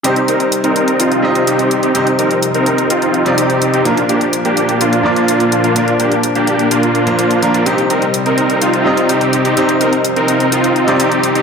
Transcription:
<<
  \new Staff \with { instrumentName = "Supersaw synth" } { \time 4/4 \key c \minor \tempo 4 = 126 <c' ees' g'>16 r16 <c' ees' bes'>16 r8 <c' ees' bes'>8. <c' ees' f'>4 <c' ees' g'>8. <c' ees' g'>16 | <c' ees' g'>16 r16 <c' ees' bes'>16 r8 <c' ees' bes'>8. <c' ees' f'>4 <c' ees' g'>8. <c' ees' g'>16 | <bes d' f'>16 r16 <bes d' g'>16 r8 <bes d' g'>8. <bes d' f'>4 <bes d' f'>8. <bes d' f'>16 | <bes d' f'>16 r16 <bes d' g'>16 r8 <bes d' g'>8. <bes d' f'>4 <bes d' f'>8. <bes d' f'>16 |
<c' ees' g'>16 r16 <c' ees' bes'>16 r8 <c' ees' bes'>8. <c' ees' f'>4 <c' ees' g'>8. <c' ees' g'>16 | <c' ees' g'>16 r16 <c' ees' bes'>16 r8 <c' ees' bes'>8. <c' ees' f'>4 <c' ees' g'>8. <c' ees' g'>16 | }
  \new Staff \with { instrumentName = "Grand piano" } { \time 4/4 \key c \minor <c g c' ees' c''>2~ <c g c' ees' c''>8 <c g c' ees' ees''>4. | <c g c' ees' c''>2~ <c g c' ees' c''>8. <c g c' ees' d''>4~ <c g c' ees' d''>16 | <bes, f bes d' bes'>2~ <bes, f bes d' bes'>8 <bes, f bes d' d''>4. | <bes, f bes d' bes'>2~ <bes, f bes d' bes'>8. <bes, f bes d' c''>8. <f bes d' bes'>8 |
<c g c' ees' c''>2~ <c g c' ees' c''>8 <c g c' ees' ees''>4. | <c g c' ees' c''>2~ <c g c' ees' c''>8. <c g c' ees' d''>4~ <c g c' ees' d''>16 | }
  \new Staff \with { instrumentName = "Analog synth pad" } { \clef bass \time 4/4 \key c \minor << { <c ees'>1~ | <c ees'>1 | <bes, d'>1~ | <bes, d'>1 |
<c ees'>1~ | <c ees'>1 | } \\ { g1 | f1~ | f1~ | f1 |
g1 | f1 | } >> }
  \new DrumStaff \with { instrumentName = "Drums" } \drummode { \time 4/4 hh16 hh16 hh16 hh16 hh16 hh16 hh16 hh16 hh16 hh8 hh16 hh16 hh16 hh16 hh16 | hh16 hh16 hh16 hh16 hh16 hh16 hh16 hh16 hh16 hh16 hh16 hh16 hh16 hh16 hh16 hh16 | hh16 hh16 hh16 hh16 hh16 hh16 hh16 hh16 hh16 hh8 hh16 hh16 hh16 hh16 hh16 | hh16 hh16 hh16 hh16 hh16 hh16 hh16 hh16 hh16 hh16 hh16 hh16 hh16 hh16 hh16 hh16 |
hh16 hh16 hh16 hh16 hh16 hh16 hh16 hh16 hh16 hh8 hh16 hh16 hh16 hh16 hh16 | hh16 hh16 hh16 hh16 hh16 hh16 hh16 hh16 hh16 hh16 hh16 hh16 hh16 hh16 hh16 hh16 | }
>>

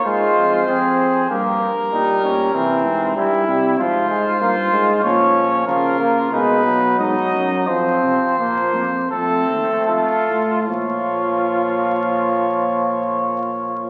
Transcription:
<<
  \new Staff \with { instrumentName = "Trumpet" } { \time 4/4 \key bes \minor \tempo 4 = 91 c''2 bes'2~ | bes'4. r8 c''2 | des''4 bes'4 b'4 dis''4 | c''2 a'4 a'4 |
des''1 | }
  \new Staff \with { instrumentName = "Trumpet" } { \time 4/4 \key bes \minor f'4 aes'4 g'8 r8 ees'8 des'8 | c'4 e'4 f'4 f'4 | des'4 f'4 dis'4 dis'4 | c'4 bes8 r8 c'4 f'4 |
f'1 | }
  \new Staff \with { instrumentName = "Trombone" } { \clef bass \time 4/4 \key bes \minor aes4 c'4 bes8 r8 g4 | e4 g8 g8 f8 aes8 bes8 aes8 | f4 f8 bes8 aes8 fis4. | f4 f8 r8 a2 |
f1 | }
  \new Staff \with { instrumentName = "Tuba" } { \clef bass \time 4/4 \key bes \minor aes,8 f,8 f,4 g,8 r8 bes,8 bes,8 | c8 aes,8 g,8 c8 aes,4 g,8 aes,8 | bes,4 des4 b,4 aes,8 fis,8 | f,8 c8 bes,8 f,8 f,8 ees,8 f,8 a,8 |
bes,1 | }
>>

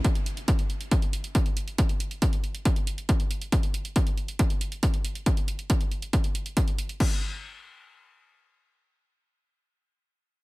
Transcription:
\new DrumStaff \with { instrumentName = "Drums" } \drummode { \time 4/4 \tempo 4 = 138 <hh bd>16 hh16 hh16 hh16 <hh bd>16 hh16 hh16 hh16 <hh bd>16 hh16 hh16 hh16 <hh bd>16 hh16 hh16 hh16 | <hh bd>16 hh16 hh16 hh16 <hh bd>16 hh16 hh16 hh16 <hh bd>16 hh16 hh16 hh16 <hh bd>16 hh16 hh16 hh16 | <hh bd>16 hh16 hh16 hh16 <hh bd>16 hh16 hh16 hh16 <hh bd>16 hh16 hh16 hh16 <hh bd>16 hh16 hh16 hh16 | <hh bd>16 hh16 hh16 hh16 <hh bd>16 hh16 hh16 hh16 <hh bd>16 hh16 hh16 hh16 <hh bd>16 hh16 hh16 hh16 |
<cymc bd>4 r4 r4 r4 | r4 r4 r4 r4 | }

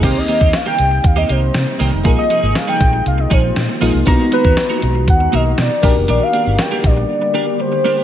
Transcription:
<<
  \new Staff \with { instrumentName = "Soft synth lead" } { \time 4/4 \key c \minor \tempo 4 = 119 c''16 ees''8. f''16 g''8. f''16 ees''16 c''4 r8 | bes'16 ees''8. f''16 g''8. f''16 ees''16 c''4 r8 | r8 b'4 r8 fis''8 dis''8 d''8. r16 | d''16 f''8. g''8 d''4. c''4 | }
  \new Staff \with { instrumentName = "FM electric piano" } { \time 4/4 \key c \minor <bes c' ees' g'>1 | <bes ees' f' aes'>2.~ <bes ees' f' aes'>8 <bes ees' f' aes'>8 | <b d' dis' fis' ais''>2.~ <b d' dis' fis' ais''>8 <bes d' g' bes'>8~ | <bes d' g' bes'>2.~ <bes d' g' bes'>8 r8 | }
  \new Staff \with { instrumentName = "Clean electric guitar" } { \time 4/4 \key c \minor <ees bes c' g'>16 r16 <ees bes c' g'>16 <ees bes c' g'>16 r16 <ees bes c' g'>16 r8. <ees bes c' g'>16 <ees bes c' g'>16 r8. <ees bes c' g'>16 r16 | <f bes ees' aes'>16 r16 <f bes ees' aes'>16 <f bes ees' aes'>16 r16 <f bes ees' aes'>16 r4 <f bes ees' aes'>16 r8. <f bes ees' aes'>16 r16 | <ais dis' fis' ais'>16 r16 <ais dis' fis' ais'>16 <ais dis' fis' ais'>16 r16 <ais dis' fis' ais'>16 r4 <ais dis' fis' ais'>16 r8. <bes d' g' bes'>16 r16 | <bes d' g' bes'>16 r16 <bes d' g' bes'>16 <bes d' g' bes'>16 r16 <bes d' g' bes'>16 r4 <bes d' g' bes'>16 r8. <bes d' g' bes'>16 <bes d' g' bes'>16 | }
  \new Staff \with { instrumentName = "Ambient pad" } { \clef bass \time 4/4 \key c \minor << { <g ees'>1 | <aes f'>1 | <b fis'>2.~ <b fis'>8 <g g'>8~ | <g g'>1 | } \\ { c1 | ees1~ | ees2.~ ees8 d8~ | d1 | } >> }
  \new Staff \with { instrumentName = "Fingered electric bass" } { \clef bass \time 4/4 \key c \minor c,16 r8 ees,16 r8 c,8 ees,8 c,8 c16 r16 c,16 f,,16 | bes,,16 r8 aes,,16 r8 bes,,8 c,8 bes,,8 bes,16 r16 bes,,16 c,16 | b,,16 r8 dis,16 r8 b,,8 dis,8 b,,8 b,16 r16 bes,,16 f,,16 | bes,,16 r8 g,,16 r8 bes,,8 r2 | }
  \new DrumStaff \with { instrumentName = "Drums" } \drummode { \time 4/4 <cymc hh bd>8 hh16 bd16 <hh sn>8 hh8 <hh bd>8 hh8 <hh sn>8 hho8 | <hh bd>8 hh8 <hh sn>8 <hh bd>8 hh8 <hh bd>8 <hh sn>8 hho8 | <hh bd>8 hh16 bd16 <hh sn>8 hh8 <hh bd>8 hh8 <hh sn>8 <hho bd>8 | hh8 hh8 <hh sn>8 <hh bd>8 r4 r4 | }
>>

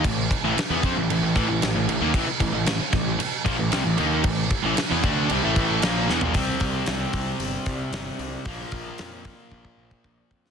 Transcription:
<<
  \new Staff \with { instrumentName = "Distorted electric guitar" } { \clef bass \time 4/4 \key a \phrygian \tempo 4 = 114 <a, e>8 r16 <a, e>16 r16 <e b>16 <f c'>16 <a, e>16 <a, e>16 <a, e>16 <a, e>16 <a, e>16 <a, e>16 <a, e>16 <a, e>16 <dis bes>16 | <a, e>16 r16 <a, e>16 <a, e>16 <a, e>16 r16 <a, e>8 r8 <bes, f>16 <a, e>16 <c g>16 <a, e>16 <dis bes dis'>8 | <a, e>8 r16 <a, e>16 r16 <e b>16 <d a d'>8 <c g>16 <a, e a>8. <bes, f bes>8 <e b>16 <bes, f>16 | <c g c'>1 |
<bes, f bes>1 | }
  \new Staff \with { instrumentName = "Overdriven electric guitar" } { \clef bass \time 4/4 \key a \phrygian <a, e>8 r16 <a, e>16 r16 <e b>16 <f c'>16 <a, e>16 <a, e>16 <a, e>16 <a, e>16 <a, e>16 <a, e>16 <a, e>16 <a, e>16 <dis bes>16 | <a, e>16 r16 <a, e>16 <a, e>16 <a, e>16 r16 <a, e>8 r8 <bes, f>16 <a, e>16 <c g>16 <a, e>16 <dis bes dis'>8 | <a, e>8 r16 <a, e>16 r16 <e b>16 <d a d'>8 <c g>16 <a, e a>8. <bes, f bes>8 <e b>16 <bes, f>16 | <c g c'>1 |
<bes, f bes>1 | }
  \new Staff \with { instrumentName = "Picked electric bass" } { \clef bass \time 4/4 \key a \phrygian a,,8 r16 a,,16 r16 e,16 f,16 a,,16 a,,16 a,,16 a,,16 a,,16 a,,16 a,,16 a,,16 dis,16 | a,,16 r16 a,,16 a,,16 a,,16 r16 a,,8 r8 bes,,16 a,,16 c,16 a,,16 dis,8 | a,,8 r16 a,,16 r16 e,16 d,8 c,16 a,,8. bes,,8 e,16 bes,,16 | c,8 c,8 c,8 c,8 g,,8 c,8 g,,8 c,8 |
bes,,8 bes,,8 f,4 bes,,8 bes,,8 bes,,8 f,8 | }
  \new DrumStaff \with { instrumentName = "Drums" } \drummode { \time 4/4 <cymc bd>8 <cymc bd>8 <cymc sn>8 <cymc bd>8 cymc8 <cymc bd>8 <cymc sn>8 cymc8 | <cymc bd>8 <cymc bd>8 <cymc sn>8 <cymc bd sn>8 cymc8 <cymc bd>8 <cymc sn>8 cymc8 | <cymc bd>8 <cymc bd>8 <cymc sn>8 <cymc bd>8 cymc8 <cymc bd>8 <cymc sn>8 sn16 tomfh16 | <hho bd>8 <hho bd>8 <hho sn>8 <hho bd>8 hho8 <hho bd>8 <hho sn>8 hho8 |
<hho bd>8 <hho bd>8 <hho sn>8 <hho bd>8 bd16 bd8 bd16 bd8 bd16 sn16 | }
>>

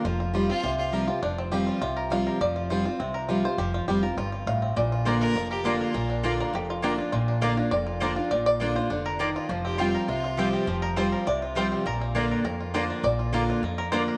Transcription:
<<
  \new Staff \with { instrumentName = "Mandolin" } { \time 4/4 \key bes \major \tempo 4 = 203 r1 | r1 | r1 | r1 |
r4 <bes f' d'' bes''>8 r4. <bes f' d'' bes''>8 r8 | r4 <bes f' d'' bes''>8 r4. <bes f' d'' bes''>8 r8 | r4 <bes f' d'' bes''>8 r4. <bes f' d'' bes''>8 r8 | r4 <bes f' d'' bes''>8 r4. <bes f' d'' bes''>8 r8 |
r4 <c' f' c'' g''>8 r4. <c' f' c'' g''>8 r8 | r4 <c' f' c'' g''>8 r4. <c' f' c'' g''>8 r8 | r4 <bes f' d'' bes''>8 r4. <bes f' d'' bes''>8 r8 | r4 <bes f' d'' bes''>8 r4. <bes f' d'' bes''>8 r8 | }
  \new Staff \with { instrumentName = "Fiddle" } { \time 4/4 \key bes \major r4. f'4 f'8. r8. | r1 | r1 | r1 |
r4. bes'4 g'4 f'8~ | f'4~ f'16 r2 r8. | r1 | r1 |
r8 g'8 f'4 f'4 g'4~ | g'16 r2. r8. | r1 | r1 | }
  \new Staff \with { instrumentName = "Five-string banjo" } { \time 4/4 \key bes \major << { f'4 f'8 r2 f'8 | d'8 c'8 g'4 f'4 f''4 | d''4 c''8 r2 c''8 | g'8 f'8 g'4 f'4 f''4 |
d''4 c''8 r2 r8 | r4. bes'8 g'8 f'8 g'4 | f'4 f''4 d''4 c''8 r8 | d''8 d''4 c''4 bes'4 f'8~ |
f'4 r2. | r8 bes'8 c''4 d''4 c''4 | bes'8 r4. bes'4 c''4 | d''4 r4. bes'8 c''8 r8 | } \\ { r8 f'4 c'8 f'8 f'8 bes'4~ | bes'8 r4 f'4 bes'4 bes'8~ | bes'8 f'4 f'8 c'8 bes'8 f'4~ | f'8 r4 bes'4 f'4 c'8 |
r8 f'4 f'8 bes8 bes'8 f'8 bes'8 | bes8 d'8 f'4. r4 f'8~ | f'8 d'4 bes4 f'4 f'8~ | f'4 f'4 d'4 d'4 |
f8 c'8 f'8 bes'8 f'8 f'8 f'8 c'8 | f4. bes'4 f'4 c'8 | r8 bes8 f'8 bes'4 f'4 bes8~ | bes8 f'8 bes'8 f'8 bes4. bes'8 | } >> }
  \new Staff \with { instrumentName = "Steel-string acoustic guitar" } { \time 4/4 \key bes \major << { r4 <f g c' f'>8 <c' f'>8 r4 <f g c' f'>8 <c' f'>8 | r4 <f g c' f'>4 r4 <f g c' f'>4 | r4 <f g c' f'>8 <c' f'>8 r4 <f g c' f'>8 <c' f'>8 | r4 <f g c' f'>8 <c' f'>8 r2 |
r4 <d bes d' f'>4 r4 <d bes d' f'>4 | r4 <d bes d' f'>4 r4 <d bes d' f'>8 <d' f'>8 | r4 <d bes d' f'>8 <d' f'>8 r4 <d bes d' f'>8 <d' f'>8 | r4 <d bes d' f'>8 <d' f'>8 r2 |
r4 <f g c' f'>4 r4 <f g c' f'>4 | r4 <f g c' f'>4 r4 <f g c' f'>4 | r4 <d bes d' f'>4 r4 <d bes d' f'>4 | r4 <d bes d' f'>4 r4 <d bes d' f'>4 | } \\ { f2 c2 | f2 c2 | f2 c2 | f2 g,4 a,4 |
bes,2 f,2 | bes,2 f,2 | bes,2 f,2 | bes,2 d4 ees4 |
f2 c2 | f2 c2 | bes,2 f,2 | bes,2 f,2 | } >> }
  \new Staff \with { instrumentName = "Upright bass" } { \clef bass \time 4/4 \key bes \major f,,2 c,2 | f,,2 c,2 | f,,2 c,2 | f,,4 f,,4 g,,4 a,,4 |
bes,,2 f,,2 | bes,,2 f,,2 | bes,,2 f,,2 | bes,,2 f,,2 |
f,,2 c,2 | f,,2 c,2 | bes,,2 f,2 | bes,,2 f,2 | }
>>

